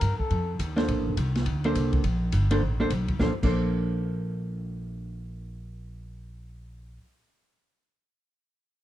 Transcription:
0.00 0.18 G2 medium
0.00 0.18 A#4 medium
0.00 kick soft
0.00 hi-hat pedal medium
0.00 ride medium
0.18 0.56 A4 medium
0.18 muted upright bass stroke soft
0.18 kick soft
0.30 0.59 F2 medium
0.30 kick soft
0.30 ride medium
0.59 0.87 D#2 medium
0.59 kick soft
0.59 hi-hat pedal medium
0.59 ride medium
0.76 1.15 A#3 medium
0.76 1.15 D4 medium
0.76 1.15 A4 medium
0.76 1.15 C5 medium
0.76 snare soft
0.76 ride soft
0.88 0.96 A#1 medium
0.88 kick soft
0.88 ride medium
0.96 1.06 A1 medium
1.07 1.16 F1 medium
1.17 1.45 C2 medium
1.17 kick soft
1.17 hi-hat pedal medium
1.17 ride medium
1.35 snare soft
1.35 ride medium
1.46 1.74 D2 medium
1.46 kick soft
1.46 ride medium
1.64 2.02 A#3 medium
1.64 2.02 D4 medium
1.64 2.03 A4 medium
1.64 2.03 C5 medium
1.64 ride soft
1.75 2.03 C2 medium
1.75 kick soft
1.75 hi-hat pedal medium
1.75 ride medium
1.93 kick medium
1.93 ride soft
2.04 2.32 A#1 medium
2.04 kick soft
2.04 ride medium
2.32 2.61 G1 medium
2.32 kick soft
2.32 hi-hat pedal medium
2.32 ride medium
2.51 2.61 A#3 medium
2.51 2.61 D4 medium
2.51 2.61 A4 medium
2.51 2.61 C5 medium
2.51 ride medium
2.61 2.90 A1 medium
2.61 kick soft
2.80 2.90 A#3 medium
2.80 2.90 D4 medium
2.80 2.90 A4 medium
2.80 2.90 C5 medium
2.90 3.18 B1 medium
2.90 kick soft
2.90 hi-hat pedal medium
2.90 ride medium
3.08 kick medium
3.08 ride soft
3.19 3.29 A#1 medium
3.19 3.31 A#3 medium
3.19 3.31 D4 medium
3.19 3.32 A4 medium
3.19 3.32 C5 medium
3.19 kick medium
3.19 snare medium
3.43 6.97 A#1 loud
3.43 7.01 A#3 medium
3.43 7.02 D4 medium
3.43 7.02 A4 medium
3.43 7.03 C5 medium
3.43 kick medium
3.43 crash medium

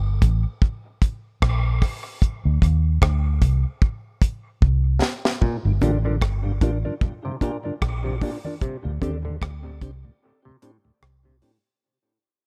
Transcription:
0.00 0.20 G1 loud
0.22 0.44 A1 medium
0.22 kick loud
0.22 closed hi-hat medium
0.62 kick loud
1.02 kick medium
1.02 closed hi-hat medium
1.42 1.80 A#1 medium
1.42 kick loud
1.42 cross-stick loud
1.82 kick medium
1.82 cross-stick medium
1.82 open hi-hat medium
2.22 kick loud
2.22 hi-hat pedal medium
2.45 2.61 D2 medium
2.62 3.00 D#2 medium
2.62 kick medium
2.62 closed hi-hat medium
3.02 3.39 D2 medium
3.02 kick loud
3.02 cross-stick loud
3.42 3.63 C2 medium
3.42 kick medium
3.42 closed hi-hat medium
3.82 kick loud
4.22 kick medium
4.22 closed hi-hat medium
4.62 4.99 C2 loud
4.62 kick loud
5.02 snare medium
5.25 snare medium
5.41 5.56 A#2 medium
5.41 kick medium
5.41 low conga medium
5.65 5.81 G1 medium
5.65 5.72 G2 medium
5.65 5.72 D3 medium
5.81 6.19 A1 medium
5.81 5.97 D3 medium
5.81 5.91 A#3 medium
5.81 5.96 D4 medium
5.81 5.92 F4 medium
5.81 5.97 F4 medium
5.81 5.92 G4 medium
5.81 5.97 A#4 medium
5.81 5.97 D5 medium
5.81 kick medium
5.81 closed hi-hat medium
5.81 high conga medium
5.81 low conga medium
6.05 6.12 G2 medium
6.05 6.16 D3 medium
6.05 6.12 D3 medium
6.05 6.14 D4 medium
6.05 6.14 F4 soft
6.05 6.14 A#4 medium
6.05 6.13 D5 medium
6.22 6.59 G1 medium
6.22 kick medium
6.22 cross-stick loud
6.45 6.52 G2 medium
6.45 6.52 D3 medium
6.61 6.83 A1 medium
6.61 6.71 A#3 medium
6.61 6.76 D4 medium
6.61 6.71 F4 medium
6.61 6.77 F4 medium
6.61 6.71 G4 medium
6.61 6.77 A#4 medium
6.61 6.77 D5 medium
6.61 kick loud
6.61 closed hi-hat medium
6.85 6.92 G2 medium
6.85 6.92 D3 medium
6.85 6.94 D4 medium
6.85 6.94 F4 medium
6.85 6.93 A#4 medium
6.85 6.93 D5 medium
7.01 kick loud
7.01 low conga medium
7.25 7.32 G2 medium
7.25 7.36 C3 medium
7.25 7.32 D3 medium
7.41 7.57 A#2 medium
7.41 7.51 A#3 medium
7.41 7.56 D4 medium
7.41 7.57 F4 medium
7.41 7.51 F4 medium
7.41 7.52 G4 medium
7.41 7.57 A#4 loud
7.41 7.57 D5 medium
7.41 kick medium
7.41 closed hi-hat medium
7.64 7.72 G2 medium
7.64 7.72 D3 medium
7.64 7.74 D4 medium
7.64 7.73 F4 medium
7.64 7.73 A#4 medium
7.64 7.73 D5 medium
7.82 8.19 A#1 medium
7.82 kick loud
7.82 cross-stick loud
8.04 8.12 G2 medium
8.04 8.15 C3 medium
8.04 8.12 D3 medium
8.21 8.37 A#2 medium
8.21 8.31 A#3 medium
8.21 8.36 D4 medium
8.21 8.31 F4 medium
8.21 8.37 F4 medium
8.21 8.32 G4 medium
8.21 8.37 A#4 medium
8.21 8.37 D5 medium
8.21 kick medium
8.21 open hi-hat medium
8.45 8.54 D4 medium
8.45 8.54 F4 medium
8.45 8.53 A#4 medium
8.45 8.53 D5 medium
8.45 high conga soft
8.62 8.77 C3 medium
8.62 kick loud
8.62 hi-hat pedal medium
8.62 low conga medium
8.85 8.92 D2 medium
8.85 9.01 D2 medium
8.85 8.92 A2 medium
9.01 9.39 D#2 medium
9.01 9.17 D3 medium
9.01 9.11 C4 medium
9.01 9.16 C4 medium
9.01 9.11 D4 medium
9.01 9.11 G4 medium
9.01 9.17 G4 medium
9.01 9.17 A4 medium
9.01 9.17 D5 medium
9.01 kick medium
9.01 closed hi-hat medium
9.25 9.32 D2 medium
9.25 9.32 A2 medium
9.25 9.36 D3 medium
9.42 9.79 D2 medium
9.42 kick loud
9.42 cross-stick loud
9.65 9.72 D2 medium
9.65 9.72 A2 medium
9.81 10.03 C2 medium
9.81 9.91 C4 medium
9.81 9.91 D4 medium
9.81 9.91 G4 medium
9.81 kick loud
9.81 closed hi-hat medium
10.05 10.12 D2 medium
10.05 10.12 A2 medium
10.45 10.52 D2 medium
10.45 10.52 A2 medium
10.45 10.56 C3 medium
10.62 10.77 A2 medium
10.62 10.71 C4 medium
10.62 10.72 D4 medium
10.62 10.72 G4 medium
10.62 closed hi-hat medium
10.85 10.92 D2 medium
10.85 10.92 A2 medium
11.02 11.40 C2 medium
11.02 cross-stick loud
11.25 11.32 D2 soft
11.25 11.32 A2 medium
11.25 11.36 C3 medium
11.42 11.57 A2 medium
11.42 11.51 C4 medium
11.42 11.52 D4 medium
11.42 11.52 G4 medium
11.42 open hi-hat medium

